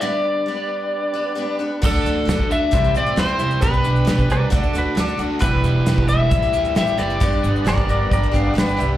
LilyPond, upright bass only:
\new Staff \with { instrumentName = "Upright bass" } { \clef bass \time 4/4 \key g \major \tempo 4 = 134 r1 | d,8 d,8 d,4 c,8 a,8 e,8 c,8 | b,,8 b,,8 b,,8 c,8 d,8 d,8 d,8 d,8 | e,,8 e,,8 e,,4 a,,8 d,8 a,,8 fis,,8 |
g,,8 g,,8 g,,8 g,,8 g,,8 g,,8 g,,8 c,8 | }